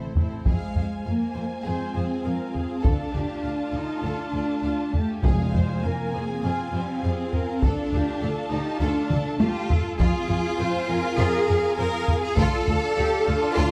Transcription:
Already playing: double bass section A1, cello section A2, french horn section E3 C4, viola section C4 E4, violin section A4 C5
0.15 viola section C4 E4, violin section A4 C5, taiko low
0.44 double bass section F2, string section G#3 F4 C5 F5, cello section G#3, french horn section G#3, violin section G#4 F5 G#5, taiko
0.75 double bass section F2, violin section C5, taiko low
1.05 double bass section F2, french horn section A#3, cello section A#3, violin section F5
1.35 double bass section F2, violin section C5
1.63 double bass section F2, french horn section C4, cello section C4, violin section G#4, viola section C5
1.95 double bass section F2, viola section G#4, violin section C5
2.24 double bass section F2, viola section A#4, violin section F5
2.54 viola section G#4, taiko low
2.82 double bass section D2, string section A3 A4, french horn section D4, cello section D4, violin section A4 A5, viola section A4, taiko
3.13 double bass section D2, viola section G4, violin section D5, taiko low
3.43 double bass section D2, viola section F4, violin section F5
3.72 double bass section D2, french horn section D#4, cello section D#4, violin section D5
4.03 double bass section D2, french horn section D4, cello section D4, violin section A4
4.33 double bass section D2, violin section D5
4.64 double bass section D2, viola section F4, violin section F5
4.93 french horn section A3, cello section A3, viola section G4, taiko low
5.22 double bass section F2, timpani F2, cello section G#3, french horn section G#3, string section C4 F4 F5 G#5, viola section G#4, violin section G#4 F5 G#5, taiko
5.53 double bass section F2, viola section C5, violin section C5, taiko low
5.83 double bass section F2, french horn section A#3, cello section A#3, viola section A#4, violin section F5
6.13 double bass section F2, viola section G#4, violin section C5
6.43 double bass section F2, french horn section C4, cello section C4, viola section F4, violin section G#4
6.73 double bass section F2, viola section G3, violin section C5
7.03 double bass section F2, viola section G#4, violin section F5
7.33 viola section A#4, taiko low
7.62 double bass section D2, string section A3 A4, french horn section D4, cello section D4, violin section A4 A5, viola section A4, taiko
7.92 double bass section D2, viola section G4, violin section D5, taiko low
8.22 double bass section D2, viola section A4, violin section F5
8.51 double bass section D2, cello section D#4, french horn section D#4, viola section G4, violin section D5
8.80 double bass section D2, french horn section D4, cello section D4, viola section F4, violin section A4
9.10 double bass section D2, viola section A4, violin section D5, taiko mid
9.40 double bass section D2, cello section F4, french horn section F4, viola section G4, violin section F5, taiko high
9.70 viola section A4, taiko low
9.99 double bass section F2, string section C4 F4 G#4 F5, cello section F4, violin section F4 F5 G#5, french horn section F4, viola section G#4, taiko
10.29 double bass section F2, violin section G#4, taiko low
10.59 double bass section F2, viola section C5, violin section C5
10.89 double bass section F2, violin section G#4, viola section A#4
11.18 double bass section F2, violin section F4, cello section G#4, french horn section G#4
11.48 double bass section F2, violin section G#4
11.77 double bass section F2, viola section G#4, french horn section A#4, cello section A#4, violin section C5
12.08 taiko low
12.22 french horn section G#4, cello section G#4
12.36 double bass section D2, string section D4 A4, violin section F4 A5, french horn section A4, viola section A4, cello section A4, taiko
12.67 double bass section D2, violin section A4, taiko low
12.96 double bass section D2, viola section G4, violin section D5
13.25 double bass section D2, viola section F4, violin section A4
13.54 double bass section D2, violin section F4, french horn section F4, cello section F4, viola section A4

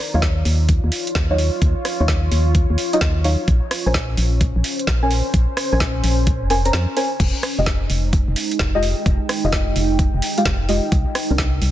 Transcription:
Already playing: ambient pad D#4 F4 A#5
0.14 fm bass D#2, synth stab F#3 D#4 F4 C#5, ambient pad C#5
0.22 kick, snare, closed hi-hat
0.45 fm bass D#2, open hi-hat
0.69 kick, closed hi-hat
0.84 fm bass D#2
0.92 open hi-hat
1.07 closed hi-hat
1.15 fm bass D#2, kick, snare, closed hi-hat
1.30 synth stab F#3 D#4 F4 C#5
1.38 open hi-hat
1.62 fm bass D#2, kick, closed hi-hat
1.85 cross-stick, open hi-hat
2.00 fm bass D#2, synth stab F#3 D#4 F4 C#5
2.08 kick, snare, closed hi-hat
2.32 fm bass D#2, open hi-hat
2.55 kick, closed hi-hat
2.70 fm bass D#2
2.78 open hi-hat
2.93 synth stab F#3 D#4 F4 D#5, closed hi-hat
3.01 fm bass D#2, kick, snare, closed hi-hat
3.24 synth stab F#3 D#4 F4 C#5, open hi-hat
3.48 fm bass A#1, ambient pad C#4, kick, closed hi-hat
3.71 cross-stick, open hi-hat
3.86 fm bass A#1, synth stab C#4 A#4 C5 G#5
3.94 kick, snare, closed hi-hat
4.03 ambient pad C5
4.17 fm bass A#1, open hi-hat
4.41 kick, closed hi-hat
4.56 fm bass A#1
4.64 open hi-hat
4.79 closed hi-hat
4.87 fm bass A#1, ambient pad G#5, kick, snare, closed hi-hat
5.03 synth stab C#4 A#4 C5 G#5
5.11 open hi-hat
5.34 fm bass A#1, kick, closed hi-hat
5.57 cross-stick, open hi-hat
5.72 fm bass A#1, synth stab C#4 A#4 C5 G#5
5.80 kick, snare, closed hi-hat
6.04 fm bass A#1, open hi-hat
6.27 kick, closed hi-hat
6.42 fm bass F1
6.50 synth stab C#4 A#4 C5 G#5, cross-stick, open hi-hat
6.65 synth stab C#4 A#4 C5 A#5, closed hi-hat
6.73 fm bass F2, snare, closed hi-hat
6.97 synth stab C#4 A#4 C5 G#5, open hi-hat
7.20 fm bass F1, ambient pad D#4, kick, closed hi-hat, crash
7.36 ambient pad G#3
7.43 cross-stick, open hi-hat
7.58 fm bass F1, synth stab G#3 F4 G4 D#5
7.66 kick, snare, closed hi-hat
7.74 ambient pad G5
7.90 fm bass F1, open hi-hat
8.13 kick, closed hi-hat
8.28 fm bass F1
8.36 open hi-hat
8.51 closed hi-hat
8.59 fm bass F1, kick, snare, closed hi-hat
8.75 synth stab G#3 F4 G4 D#5
8.83 open hi-hat
9.06 fm bass F1, kick, closed hi-hat
9.29 cross-stick, open hi-hat
9.44 fm bass F1, synth stab G#3 F4 G4 D#5
9.52 kick, snare, closed hi-hat
9.76 fm bass F1, open hi-hat
9.99 kick, closed hi-hat
10.14 fm bass F1
10.22 open hi-hat
10.38 synth stab G#3 F4 G4 F5, closed hi-hat
10.45 fm bass F1, kick, snare, closed hi-hat
10.69 synth stab G#3 F4 G4 D#5, open hi-hat
10.92 fm bass C2, kick, closed hi-hat
11.15 cross-stick, open hi-hat
11.30 fm bass C2, synth stab D#3 C4 D4 A#4
11.38 kick, snare, closed hi-hat
11.58 ambient pad D5
11.62 fm bass C2, open hi-hat

